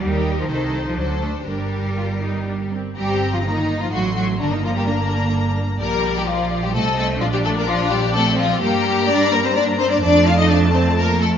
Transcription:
X:1
M:3/4
L:1/16
Q:1/4=127
K:Gm
V:1 name="Violin section"
B4 c4 c4 | B8- B2 z2 | b8 c'4 | b12 |
d8 e4 | d12 | b12 | a12 |]
V:2 name="Violin section"
G4 A4 A4 | G8- G2 z2 | G3 F E3 F ^F2 F2 | D E F G D6 z2 |
B3 G F3 G A2 A2 | F G A B F2 G2 A2 F2 | G4 d2 B c d2 c d | d2 f e d2 c2 B2 A2 |]
V:3 name="Viola section"
E4 E4 D4 | D4 F2 E2 D2 C2 | C4 B,4 A,4 | B,12 |
G,4 F,4 C4 | D8 C4 | B,4 G,4 B,4 | A,12 |]
V:4 name="Cello section" clef=bass
G,3 F, E,3 F, ^F,2 A,2 | G,8- G,2 z2 | G,3 F, E,3 F, ^F,2 F,2 | D, E, F, G, D,6 z2 |
B,3 G, F,3 G, A,2 A,2 | F, G, A, B, F,2 G,2 A,2 F,2 | G,4 D2 B, C D2 C D | D2 F E D2 C2 B,2 A,2 |]
V:5 name="Double bass section" clef=bass
E,,4 C,,4 D,,4 | G,,,8- G,,,2 z2 | G,,,8 A,,,4 | G,,,12 |
B,,,8 C,,4 | B,,,12 | G,,12 | F,,12 |]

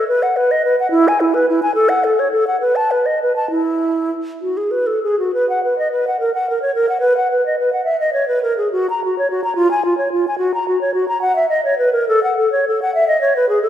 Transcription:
X:1
M:6/8
L:1/16
Q:3/8=71
K:E
V:1 name="Flute"
B f B d B f E g E B E g | A f A c A f B a B d B a | E6 F G B A G F | [K:B] B f B d B f A f A c A f |
B f B d B f e d c B A G | F a F c F a ^E g E c E g | F a F c F a f e d c B A | [K:F#dor] A f A c A f e d c B G A |]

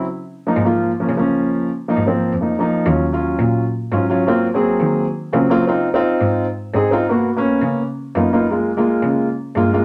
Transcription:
X:1
M:4/4
L:1/16
Q:1/4=170
K:Db
V:1 name="Grand piano"
z4 z [F,B,E] z [F,B,F]3 z [F,B,D] z [F,B,D]3- | [F,B,D]3 z2 [F,B,E] z [F,B,C]3 z [F,B,E] z [F,B,E]3 | [G,DF]2 z [G,DF]6 z3 [G,DF] z [G,DF] z | [G,B,CF]2 z [G,B,CA]6 z3 [G,B,CF] z [G,B,CF] z |
[CEF]2 z [CEF]6 z3 [CEA] z [CEF] z | [B,_CG]2 z [B,CD]4- [B,CD] z4 [B,CEF] z [B,CEF] z | [A,B,F]2 z [A,B,F]6 z3 [A,B,F] z [A,B,F] z |]
V:2 name="Cello" clef=bass
D,6 A,,6 D,4- | D,6 A,,4 F,,2 z4 | E,,6 B,,6 A,,4- | A,,6 E,6 D,4- |
D,6 A,,6 A,,4- | A,,6 D,6 G,,4- | G,,6 D,6 =G,,4 |]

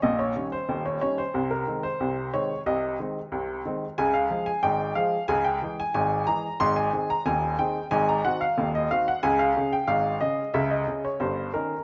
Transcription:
X:1
M:2/4
L:1/16
Q:1/4=91
K:Ab
V:1 name="Upright piano"
e d2 c2 d d c- | c B2 c3 d2 | e2 z6 | a f2 a g2 f2 |
a g2 a a2 b2 | c' a2 b a2 g2 | a b _g f2 e f g | a f2 g f2 e2 |
_f e2 d c2 B2 |]
V:2 name="Upright piano" clef=bass
[B,,,B,,]2 [E,G,D]2 [E,,,E,,]2 [E,G,D]2 | [C,,C,]2 [E,A,C]2 [C,,C,]2 [E,A,C]2 | [C,,C,]2 [E,A,C]2 [C,,C,]2 [E,A,C]2 | [D,,D,]2 [F,A,A]2 [A,,,A,,]2 [F,A,A]2 |
[D,,D,]2 [_F,A,A]2 [A,,,A,,]2 [F,A,A]2 | [A,,,A,,]2 [E,CA]2 [E,,,E,,]2 [E,CA]2 | [A,,,A,,]2 [E,C_G]2 [E,,,E,,]2 [E,CG]2 | [D,,D,]2 [D,DA]2 [A,,,A,,]2 [D,DA]2 |
[D,,D,]2 [D,DA]2 [G,,,G,,]2 [E,DE]2 |]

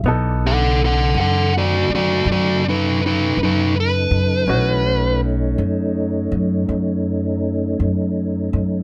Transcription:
X:1
M:12/8
L:1/8
Q:3/8=54
K:Bmix
V:1 name="Lead electric guitar"
z [Af] [Af] [Af] [F=d] [Fd] [Fd] [^DB] [DB] [DB] B2- | B2 z8 z2 |]
V:2 name="Upright piano"
[B,DA]12 | [CDF]12 |]
V:3 name="Tonewheel organ"
[E,A=d] [C,^DA]8- [C,DA]3 | [E,A,C] [A,CD]8- [A,CD]3 |]
V:4 name="Upright bass" clef=bass
B,,,3 F,,2 F,, F,,3 F,,2 F,, | B,,,3 F,,2 F,, F,,3 F,,2 F,, |]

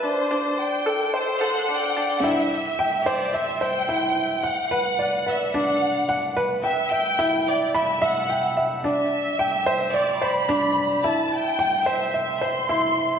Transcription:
X:1
M:4/4
L:1/8
Q:1/4=109
K:Em
V:1 name="Violin section"
c2 g2 c f g2 | e3 d e g3 | f3 e f3 z | e g2 d e f2 z |
e4 d b3 | a g2 e2 c'3 |]
V:2 name="Grand piano"
D D z A c A D D | E z g c e c E z | f B d B D z f B | g e E z b e g e |
D z g c d c D z | E z g c e c E z |]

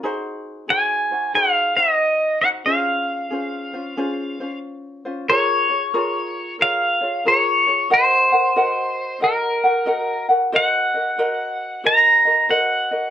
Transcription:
X:1
M:4/4
L:1/8
Q:"Swing" 1/4=92
K:Db
V:1 name="Pedal steel guitar"
z2 a2 f e2 g | f6 z2 | [K:Bbm] d4 f2 d2 | c4 B3 z |
g4 b2 g2 |]
V:2 name="Ukulele"
[EGAc]2 [EGAc] [EGc] [EGAc] [EGc]2 [EGc] | [DFAc]2 [DFAc] [DFc] [DFAc] [DFc]2 [DFc] | [K:Bbm] [FABd] [FAd] [FABd]2 [FABd] [FAd] [FABd] [FAd] | [GBeg] [GBg] [GBeg]2 [GBeg] [GBg] [GBeg] [GBg] |
[GBce] [GBe] [GBce]2 [GBce] [GBe] [GBce] [GBe] |]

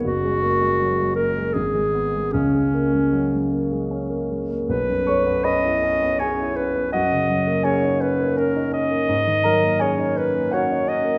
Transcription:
X:1
M:3/4
L:1/16
Q:1/4=81
K:B
V:1 name="Clarinet"
F6 A2 G4 | C8 z4 | B4 d4 c2 B2 | d4 c2 B2 A2 d2- |
d4 c2 B2 c2 d2 |]
V:2 name="Grand piano"
z12 | z12 | z2 [cc']2 [Bb]4 [Gg]4 | [Ff]4 [Gg]6 z2 |
z2 [Aa]2 [Gg]4 [Ff]4 |]
V:3 name="Grand piano"
F,,, G, A, G, F, G, A, G, G,,, G, B, G, | C,, G, A, G, F, G, A, G, C A, G, A, | B,,, F,, =A, B, C E C B, C E C B, | F,, C, F, A, C D C A, C D C A, |
G,, D, F, A, C D C A, C D C A, |]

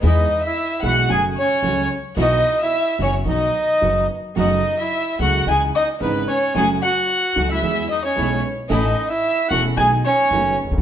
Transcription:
X:1
M:4/4
L:1/16
Q:1/4=111
K:E
V:1 name="Violin"
d3 e3 f2 g2 c4 z2 | d3 e3 c2 d6 z2 | d3 e3 f2 g2 d2 B2 c2 | g2 f4- f e3 d c3 z2 |
d3 e3 f2 g2 c4 z2 |]
V:2 name="Bandoneon"
[Dd]3 [Ee]3 [Ff]2 [Gg]2 [Cc]4 z2 | [Dd]3 [Ee]3 [Cc]2 [Dd]6 z2 | [Dd]3 [Ee]3 [Ff]2 [Gg]2 [Dd]2 [B,B]2 [Cc]2 | [Gg]2 [Ff]4- [Ff] [Ee]3 [Dd] [Cc]3 z2 |
[Dd]3 [Ee]3 [Ff]2 [Gg]2 [Cc]4 z2 |]
V:3 name="String section"
[G,B,E]2 z4 [G,B,E]2 [A,CF]2 z2 [A,CF]2 z2 | [B,EF]2 z4 [B,EF]2 [B,DF]2 z2 [B,DF]2 z2 | [A,CF]2 z4 [A,CF]2 [CDE]2 z2 [CDE]2 z2 | [A,CF]2 z4 [A,CF]2 [G,B,E]2 z2 [G,B,E]2 z2 |
[A,CE]2 z4 [A,CE]2 [A,B,D]2 z2 [A,B,D]2 z2 |]
V:4 name="Grand piano" clef=bass
[E,,E,G,B,G]2 z4 [B,,,B,,E,G,B,G]2 [F,,C,F,A,F]2 z2 [C,,C,F,A,F]2 z2 | [B,,,B,,E,F,B,F]2 z4 [F,,,F,,E,F,B,F]2 [B,,,B,,D,F,B,F]2 z2 [F,,,F,,D,F,B,F]2 z2 | [F,,C,F,A,F]2 z4 [C,,C,F,A,F]2 [C,,C,E,G,D]2 z2 [G,,,G,,C,E,G,D]2 z2 | [F,,C,F,A,F]2 z4 [C,,C,F,A,F]2 [E,,E,G,B,G]2 z2 [B,,,B,,E,G,B,G]2 z2 |
[A,,,A,,E,A,CA]2 z4 [E,,,E,,E,A,CA]2 [B,,,B,,D,A,B,F]2 z2 [F,,,F,,D,A,B,F]2 z/2 C,,/2 =D,,/2 z/2 |]
V:5 name="Upright bass" clef=bass
E,,3/2 z4 z/2 B,,,3/2 z/2 F,,,3/2 z2 z/2 C,,3/2 z2 z/2 | B,,,3/2 z4 z/2 F,,,3/2 z/2 B,,,3/2 z2 z/2 F,,,3/2 z2 z/2 | F,,,3/2 z4 z/2 C,,3/2 z/2 C,,3/2 z2 z/2 G,,,3/2 z2 z/2 | F,,,3/2 z4 z/2 C,,3/2 z/2 E,,3/2 z2 z/2 B,,,3/2 z2 z/2 |
A,,,3/2 z4 z/2 E,,,3/2 z/2 B,,,3/2 z2 z/2 F,,,3/2 z C,,/2 =D,,/2 ^D,,/2 |]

